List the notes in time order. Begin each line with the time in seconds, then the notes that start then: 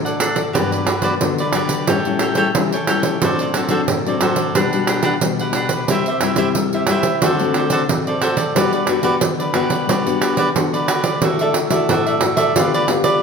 Already playing: A2 F#3 A3 D4
0.05 A4 D5 F#5, pandeiro
0.20 D4 A4 D5 F#5, pandeiro
0.35 A4 D5 F#5, pandeiro
0.53 G2 F#3 B3 D4 F#4 G4 B4 D5, pandeiro
0.71 G4 B4 D5, pandeiro
0.87 F#4 G4 B4 D5, pandeiro
1.02 F#3 B3 D4 F#4 G4 B4 D5, pandeiro
1.21 D3 F#3 B3 D4, pandeiro
1.38 G4 B4 D5, pandeiro
1.53 F#3 B3 D4 F#4 G4 B4 D5, pandeiro
1.69 pandeiro
1.87 A2 G3 C#4 E4 G4 A4 C#5 G5, pandeiro
2.05 G3 C#4 E4, pandeiro
2.19 G4 A4 C#5 G5, pandeiro
2.35 G3 C#4 E4 G4 A4 C#5 G5, pandeiro
2.55 E3 G3 C#4 E4, pandeiro
2.72 A4 C#5 G5, pandeiro
2.87 G3 C#4 E4 G4 A4 C#5 G5, pandeiro
3.03 A4 C#5 G5, pandeiro
3.22 A2 F#3 C4 D4 F#4 A4 C5 D5, pandeiro
3.39 A4 C5 D5, pandeiro
3.54 F#3 C4 D4 F#4 A4 C5 D5, pandeiro
3.69 F#3 C4 D4 F#4 A4 C5 D5, pandeiro
3.88 A2, pandeiro
4.06 F#3 C4 D4 A4 C5 D5, pandeiro
4.20 F#3 C4 D4 F#4 A4 C5 D5, pandeiro
4.36 pandeiro
4.55 B2 G3 D4 F#4 G4 B4 F#5, pandeiro
4.73 G3 D4 F#4, pandeiro
4.87 D4 G4 B4 F#5, pandeiro
5.03 D4 G4 B4 F#5, pandeiro
5.21 B2 G3 D4 F#4, pandeiro
5.39 G4 B4 F#5, pandeiro
5.53 D4 G4 B4 F#5, pandeiro
5.69 G4 B4 F#5, pandeiro
5.88 C3 G3 C4 E4 G4 C5 E5, pandeiro
6.06 G4 C5 E5, pandeiro
6.21 G3 C4 E4 G4 C5 E5, pandeiro
6.36 G3 C4 E4 G4 C5 E5, pandeiro
6.55 G3, pandeiro
6.73 G3 C4 E4 G4 C5 E5, pandeiro
6.87 G3 C4 E4 G4 C5, pandeiro
6.91 E5
7.03 pandeiro
7.22 D3 A3 C4 F#4 A4 C5 D5, pandeiro
7.39 A3 C4 F#4, pandeiro
7.54 F#4 A4 C5 D5, pandeiro
7.70 F#4 A4 C5 D5, pandeiro
7.88 A2 A3 C4 F#4, pandeiro
8.07 A4 C5 D5, pandeiro
8.22 F#4 A4 C5 D5, pandeiro
8.37 A4 C5 D5, pandeiro
8.55 G3 B3 D4 F#4 G4 B4 D5, pandeiro
8.73 G4 B4 D5, pandeiro
8.87 B3 D4 F#4 G4 B4 D5, pandeiro
9.03 B3 D4 F#4 G4 B4 D5, pandeiro
9.21 D3, pandeiro
9.39 G4 B4 D5, pandeiro
9.54 B3 D4 F#4 G4 B4 D5, pandeiro
9.70 pandeiro
9.87 G3 F#4 G4 B4, pandeiro
9.91 D5
10.06 B3 D4 F#4, pandeiro
10.21 F#4 G4 B4 D5, pandeiro
10.37 F#4 G4 B4 D5, pandeiro
10.54 D3 B3 D4 F#4, pandeiro
10.73 G4 B4 D5, pandeiro
10.88 F#4 G4 B4 D5, pandeiro
11.04 G4 B4 D5, pandeiro
11.21 D3 A3 E4 F#4 A4 D5 E5, pandeiro
11.39 A4 D5 E5, pandeiro
11.54 muted cavaquinho stroke, pandeiro
11.70 A3 E4 F#4 A4 D5 E5, pandeiro
11.89 A2 F#4 A4 D5 E5, pandeiro
12.06 A4 D5 E5, pandeiro
12.20 A3 E4 F#4, pandeiro
12.37 A4 D5 E5, pandeiro
12.56 D3 B3 F4 G4 B4 D5, pandeiro
12.74 G4 B4 D5, pandeiro
12.88 B3 F4 G4, muted cavaquinho stroke, pandeiro
13.04 G4 B4 D5, pandeiro